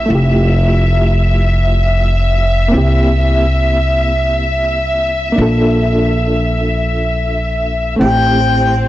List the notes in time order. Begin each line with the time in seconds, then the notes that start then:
Already playing: E5
0.06 A3 E4
0.10 F1 F4
0.15 G4
2.68 A#3 C4
2.73 C2 E4
2.78 G4
5.32 A#3 D4
5.38 A#1 F4 A4
7.96 A3 C4
8.00 A1 C4 E4 G5
8.05 G4